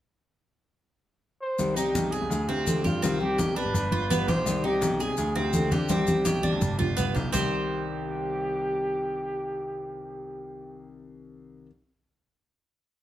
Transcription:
1.41 1.77 C5 loud
1.58 1.93 C2 medium
1.58 1.76 C3 medium
1.58 1.76 D#3 medium
1.58 1.76 G3 medium
1.58 1.76 C4 medium
1.58 1.75 G4 medium
1.58 high conga soft
1.58 maracas medium
1.76 2.13 D#3 soft
1.76 2.12 G3 medium
1.76 2.12 C4 medium
1.76 2.11 D#4 medium
1.76 2.13 G4 loud
1.76 2.11 G4 medium
1.76 high conga soft
1.76 maracas medium
1.95 2.20 B1 medium
1.95 high conga medium
1.95 maracas medium
2.11 2.30 G3 soft
2.11 2.30 C4 soft
2.11 2.29 G4 soft
2.11 2.49 G#4 medium
2.11 2.47 G#4 medium
2.11 high conga soft
2.11 maracas soft
2.21 2.30 C2 medium
2.30 2.47 D2 loud
2.30 muted nylon-string guitar stroke medium
2.30 high conga soft
2.30 maracas medium
2.48 2.83 D2 medium
2.48 2.66 G#3 soft
2.48 2.83 C4 medium
2.48 2.66 C4 soft
2.48 2.66 F4 medium
2.48 2.84 G4 medium
2.48 high conga soft
2.66 2.84 D3 medium
2.66 2.84 G#3 medium
2.66 2.84 C4 medium
2.66 2.82 F4 medium
2.66 high conga medium
2.66 maracas medium
2.84 3.02 G2 medium
2.84 3.02 G#3 soft
2.84 3.02 C4 soft
2.84 3.01 F4 soft
2.84 3.18 F4 medium
2.84 3.02 G4 medium
2.84 high conga medium
2.84 maracas soft
3.02 3.37 C2 medium
3.02 3.20 C3 medium
3.02 3.20 D#3 medium
3.02 3.20 G3 medium
3.02 3.37 C4 medium
3.02 3.20 C4 medium
3.02 3.19 G4 medium
3.02 high conga soft
3.02 maracas medium
3.20 3.57 D#3 medium
3.20 3.56 G3 medium
3.20 3.56 C4 medium
3.20 3.55 G4 medium
3.20 3.57 G4 loud
3.20 high conga soft
3.38 3.64 B1 medium
3.38 3.56 G4 medium
3.38 high conga medium
3.38 maracas medium
3.56 3.73 G3 soft
3.56 3.74 C4 soft
3.56 3.91 D4 medium
3.56 3.74 G4 medium
3.56 4.28 B4 loud
3.56 maracas soft
3.65 3.74 G#1 medium
3.74 3.90 G1 loud
3.74 muted nylon-string guitar stroke medium
3.74 high conga soft
3.74 maracas medium
3.92 4.26 G1 medium
3.92 4.10 B3 soft
3.92 4.09 F4 medium
3.92 4.10 F4 medium
3.92 high conga soft
4.10 4.27 G3 medium
4.10 4.28 B3 medium
4.10 4.27 F4 medium
4.10 high conga medium
4.10 maracas medium
4.27 4.45 B1 medium
4.27 4.47 B3 soft
4.27 4.46 F4 soft
4.27 4.63 G4 medium
4.27 4.62 C5 medium
4.27 high conga medium
4.27 maracas soft
4.45 4.80 C2 medium
4.45 4.64 C3 medium
4.45 4.64 D#3 medium
4.45 4.64 G3 medium
4.45 4.64 C4 medium
4.45 4.63 G4 medium
4.45 high conga soft
4.45 maracas medium
4.64 5.01 D#3 medium
4.64 5.00 G3 medium
4.64 5.00 C4 medium
4.64 4.99 D#4 medium
4.64 4.99 G4 medium
4.64 5.02 G4 medium
4.64 high conga soft
4.81 5.07 B1 loud
4.81 high conga medium
4.81 maracas medium
5.00 5.17 G3 soft
5.00 5.17 C4 soft
5.00 5.17 G4 soft
5.00 5.35 G#4 medium
5.00 5.38 G#4 medium
5.00 high conga soft
5.00 maracas soft
5.09 5.18 C3 medium
5.17 5.34 D2 loud
5.17 muted nylon-string guitar stroke medium
5.17 high conga soft
5.17 maracas medium
5.35 5.70 D2 medium
5.35 5.53 G#3 soft
5.35 5.71 C4 medium
5.35 5.54 C4 medium
5.35 5.53 F4 soft
5.35 5.72 G4 medium
5.35 high conga soft
5.53 5.71 D3 medium
5.53 5.72 G#3 medium
5.53 5.72 C4 medium
5.53 5.71 F4 medium
5.53 high conga medium
5.53 maracas medium
5.71 5.89 D3 loud
5.71 5.90 G#3 soft
5.71 5.90 C4 soft
5.71 5.89 F4 medium
5.71 5.89 G4 medium
5.71 7.12 G4 medium
5.71 high conga medium
5.71 maracas soft
5.89 6.24 C2 medium
5.89 6.07 C3 medium
5.89 6.07 D#3 medium
5.89 6.07 G3 medium
5.89 6.25 C4 medium
5.89 6.07 C4 medium
5.89 6.06 G4 medium
5.89 high conga medium
5.89 maracas medium
6.07 6.44 D#3 medium
6.07 6.43 G3 medium
6.07 6.43 C4 medium
6.07 6.42 G4 medium
6.07 high conga medium
6.07 maracas medium
6.25 6.51 B1 medium
6.25 6.43 G4 medium
6.25 high conga medium
6.25 maracas medium
6.43 6.60 G3 soft
6.43 6.61 C4 soft
6.43 6.78 D4 medium
6.43 6.61 G4 soft
6.43 high conga medium
6.43 maracas soft
6.52 6.61 D2 medium
6.61 6.78 G1 loud
6.61 muted nylon-string guitar stroke medium
6.61 low conga medium
6.61 maracas medium
6.78 7.14 G1 medium
6.78 6.97 B3 soft
6.78 6.96 F4 medium
6.78 6.97 F4 medium
6.78 low conga medium
6.97 7.14 G3 medium
6.97 7.14 B3 medium
6.97 7.15 B3 medium
6.97 7.13 F4 medium
6.97 low conga medium
6.97 maracas medium
7.15 7.32 B1 loud
7.15 7.33 B3 soft
7.15 7.32 F4 medium
7.15 7.32 G4 medium
7.15 low conga medium
7.15 maracas soft
7.32 11.66 C2 medium
7.32 11.69 C3 medium
7.32 11.70 D#3 medium
7.32 11.70 G3 medium
7.32 11.65 C4 medium
7.32 11.71 C4 medium
7.32 11.66 G4 medium
7.32 10.96 G4 medium
7.32 11.71 G4 medium
7.32 11.66 C5 medium
7.32 low conga medium
7.32 maracas medium

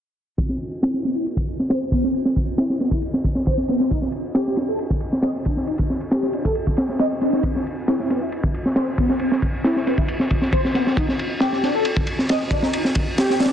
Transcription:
0.38 0.45 C4 medium
0.38 kick loud
0.38 ride medium
0.49 snare soft
0.60 ride medium
0.82 1.03 E4 medium
0.82 snare loud
0.82 ride medium
0.94 snare soft
1.04 1.14 B3 medium
1.04 snare soft
1.04 ride medium
1.15 1.25 E4 medium
1.26 ride medium
1.37 kick medium
1.48 ride medium
1.59 snare soft
1.70 1.77 C5 loud
1.70 snare loud
1.70 ride medium
1.92 2.03 B3 medium
1.92 kick medium
1.92 ride medium
2.04 2.13 C4 medium
2.04 snare soft
2.14 2.21 C4 medium
2.14 ride medium
2.25 snare medium
2.36 kick medium
2.36 ride medium
2.58 2.79 E4 medium
2.58 snare loud
2.58 ride medium
2.70 snare soft
2.80 2.91 B3 medium
2.80 snare soft
2.80 ride medium
2.91 3.02 E4 medium
2.91 kick medium
3.02 ride medium
3.14 snare soft
3.24 kick medium
3.24 ride medium
3.35 snare soft
3.46 3.54 C5 loud
3.46 kick medium
3.46 ride medium
3.57 snare soft
3.68 3.79 B3 medium
3.68 snare soft
3.68 ride medium
3.80 3.90 C4 medium
3.80 snare soft
3.91 3.98 D#4 medium
3.91 kick loud
3.91 ride medium
4.02 snare soft
4.12 ride medium
4.35 4.56 G4 medium
4.35 snare loud
4.35 ride medium
4.47 snare soft
4.56 4.67 D4 medium
4.56 snare soft
4.56 ride medium
4.68 4.78 A4 medium
4.79 ride medium
4.90 kick medium
5.00 ride medium
5.12 snare soft
5.22 5.30 D#5 loud
5.22 snare loud
5.22 ride medium
5.45 5.56 D4 medium
5.45 kick medium
5.45 ride medium
5.56 5.66 D#4 medium
5.56 snare soft
5.67 5.74 D#4 medium
5.67 ride medium
5.78 kick medium
5.78 ride medium
5.90 snare soft
6.01 ride medium
6.11 6.32 G4 medium
6.11 snare loud
6.11 ride medium
6.22 snare soft
6.33 6.44 D4 medium
6.33 ride medium
6.45 6.54 A4 medium
6.45 kick medium
6.55 ride medium
6.67 kick medium
6.77 snare loud
6.77 ride medium
6.89 snare soft
6.99 7.06 D#5 loud
6.99 snare loud
6.99 ride medium
7.21 7.32 D4 medium
7.21 snare soft
7.21 ride medium
7.33 7.43 D#4 medium
7.33 snare soft
7.43 7.51 C4 medium
7.43 kick loud
7.43 ride medium
7.56 snare soft
7.67 ride medium
7.88 8.09 E4 medium
7.88 snare loud
7.88 ride medium
8.00 snare soft
8.10 8.21 B3 medium
8.10 snare soft
8.10 ride medium
8.22 8.31 E4 medium
8.32 ride medium
8.44 kick medium
8.54 ride medium
8.66 snare soft
8.76 8.83 C5 loud
8.76 snare loud
8.76 ride medium
8.98 9.09 B3 medium
8.98 kick medium
8.98 ride medium
9.10 9.19 C4 medium
9.10 snare medium
9.19 9.27 C4 medium
9.19 ride medium
9.32 snare medium
9.42 kick medium
9.42 ride medium
9.64 9.85 E4 medium
9.64 snare loud
9.64 ride medium
9.76 snare soft
9.86 9.97 B3 medium
9.86 snare soft
9.86 ride medium
9.97 10.07 E4 medium
9.97 kick medium
10.08 ride medium
10.20 snare soft
10.30 kick medium
10.30 ride medium
10.42 snare soft
10.52 10.60 C5 loud
10.52 kick loud
10.52 ride medium
10.65 snare soft
10.74 10.85 B3 medium
10.74 snare soft
10.74 ride medium
10.86 10.96 C4 medium
10.86 snare soft
10.96 11.03 D#4 medium
10.96 kick loud
10.96 ride medium
11.08 snare soft
11.19 ride medium
11.40 11.62 G4 medium
11.40 snare loud
11.40 ride medium
11.52 snare soft
11.63 11.73 D4 medium
11.63 snare soft
11.63 ride medium
11.74 11.84 A4 medium
11.85 ride medium
11.97 kick medium
12.07 ride medium
12.19 snare soft
12.29 12.36 D#5 loud
12.29 snare loud
12.29 ride medium
12.51 12.62 D4 medium
12.51 kick medium
12.51 ride medium
12.63 12.72 D#4 medium
12.63 snare medium
12.73 12.80 D#4 medium
12.73 ride medium
12.85 snare soft
12.95 kick medium
12.95 ride medium
13.18 13.39 G4 medium
13.18 snare loud
13.18 ride medium
13.30 snare soft
13.40 13.50 D4 medium
13.40 snare medium
13.40 ride medium
13.45 snare medium
13.45 ride medium

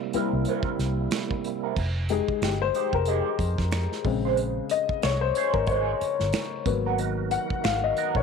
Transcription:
0.00 1.74 C3 medium
0.00 1.74 G3 medium
0.00 1.74 A#3 medium
0.00 1.74 E4 medium
0.13 1.73 G3 medium
0.13 1.73 A#3 medium
0.13 0.32 C4 medium
0.13 1.73 E4 medium
0.13 0.32 E4 medium
0.13 0.32 A#4 medium
0.13 muted fingered electric bass stroke soft
0.13 closed hi-hat medium
0.33 0.44 C2 medium
0.45 0.68 C4 medium
0.45 0.68 E4 medium
0.45 closed hi-hat medium
0.49 0.69 A#4 medium
0.63 muted fingered electric bass stroke soft
0.63 kick loud
0.79 1.06 C2 medium
0.79 snare soft
0.79 closed hi-hat medium
1.11 finger snap medium
1.11 snare loud
1.11 closed hi-hat medium
1.31 kick medium
1.44 closed hi-hat medium
1.64 1.76 C4 soft
1.64 1.76 E4 medium
1.64 1.76 A#4 medium
1.76 2.20 F1 loud
1.76 kick loud
1.76 crash medium
2.09 4.01 G#3 medium
2.09 4.02 D#4 medium
2.09 2.42 G4 soft
2.09 2.44 G#4 medium
2.09 closed hi-hat medium
2.28 kick medium
2.42 2.69 G1 medium
2.42 2.61 G4 medium
2.42 finger snap medium
2.42 snare loud
2.42 closed hi-hat medium
2.62 2.95 C5 loud
2.75 2.92 G#3 medium
2.75 2.92 D#4 medium
2.75 2.92 G4 medium
2.75 closed hi-hat medium
2.93 3.21 F1 medium
2.93 3.08 A#4 medium
2.93 kick medium
3.05 3.28 G#3 medium
3.05 3.29 D#4 medium
3.05 3.29 G4 loud
3.05 3.69 G#4 medium
3.05 closed hi-hat medium
3.39 3.55 F2 medium
3.39 kick loud
3.39 closed hi-hat medium
3.58 3.86 F2 medium
3.58 kick medium
3.58 snare soft
3.71 finger snap medium
3.71 snare loud
3.71 closed hi-hat medium
3.92 snare soft
4.05 4.59 A#1 medium
4.05 4.99 C#3 medium
4.05 4.99 G#3 medium
4.05 4.99 C4 medium
4.05 kick loud
4.05 open hi-hat soft
4.25 4.37 C#4 medium
4.25 4.37 G#4 medium
4.25 4.37 C5 medium
4.37 closed hi-hat medium
4.70 5.01 D#5 loud
4.70 closed hi-hat medium
4.89 kick medium
5.02 5.30 C2 medium
5.02 5.21 C#5 medium
5.02 finger snap medium
5.02 snare medium
5.02 closed hi-hat medium
5.21 5.52 C5 medium
5.35 5.53 C#4 medium
5.35 5.53 G#4 medium
5.35 5.54 C5 medium
5.35 closed hi-hat medium
5.53 5.93 G#1 medium
5.53 5.58 A#4 medium
5.53 kick medium
5.67 5.90 C#4 medium
5.67 6.29 C#5 medium
5.67 kick medium
5.67 closed hi-hat medium
5.71 5.90 G#4 medium
5.71 5.91 C5 medium
6.01 muted fingered electric bass stroke soft
6.01 closed hi-hat medium
6.20 6.31 G1 medium
6.20 snare soft
6.33 finger snap medium
6.33 snare loud
6.33 closed hi-hat medium
6.66 7.36 G#1 loud
6.66 7.60 F#3 medium
6.66 7.60 A#3 medium
6.66 7.60 B3 medium
6.66 kick loud
6.66 closed hi-hat medium
6.86 6.98 B3 soft
6.86 6.98 F#4 medium
6.86 6.98 A#4 medium
6.98 8.23 D#3 medium
6.98 8.23 F#4 medium
6.98 8.23 A#4 medium
6.98 closed hi-hat medium
7.31 7.65 F#5 medium
7.31 closed hi-hat medium
7.50 kick medium
7.64 7.91 G#1 medium
7.64 7.83 F5 loud
7.64 finger snap medium
7.64 snare loud
7.64 closed hi-hat medium
7.84 8.17 D#5 medium
7.97 8.14 B3 medium
7.97 8.14 F#4 medium
7.97 8.14 A#4 medium
7.97 closed hi-hat medium
8.15 8.23 A#1 medium
8.15 8.23 C#5 medium
8.15 kick medium

